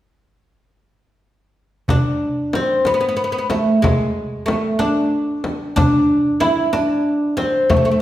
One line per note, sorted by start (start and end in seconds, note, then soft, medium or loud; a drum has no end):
1.88 2.55 D4 medium
1.88 darbuka dum medium
1.88 frame drum medium
2.53 2.88 C4 medium
2.53 darbuka tek medium
2.53 frame drum medium
2.85 2.93 B3 medium
2.85 darbuka tek medium
2.85 frame drum medium
2.94 2.99 B3 medium
3.01 3.07 B3 medium
3.09 3.15 B3 medium
3.17 3.23 B3 medium
3.24 3.31 B3 soft
3.32 3.37 B3 medium
3.39 3.47 B3 medium
3.50 3.82 A3 medium
3.50 darbuka tek medium
3.50 frame drum medium
3.82 4.45 G#3 medium
3.82 darbuka dum medium
3.82 frame drum medium
4.46 4.80 A3 medium
4.46 darbuka tek medium
4.46 frame drum medium
4.79 5.75 D4 medium
4.79 darbuka tek medium
4.79 frame drum medium
5.14 darbuka ka soft
5.44 darbuka tek medium
5.44 frame drum medium
5.76 6.40 D4 medium
5.76 frame drum medium
5.76 darbuka dum medium
6.40 6.72 E4 medium
6.40 darbuka tek medium
6.40 frame drum medium
6.73 7.36 D4 medium
6.73 darbuka tek medium
6.73 frame drum medium
7.08 darbuka ka soft
7.37 7.71 C4 medium
7.37 darbuka tek medium
7.37 frame drum medium
7.70 7.75 A3 medium
7.70 frame drum medium
7.70 darbuka dum medium
7.77 7.84 A3 soft
7.85 7.90 A3 medium
7.92 7.99 A3 soft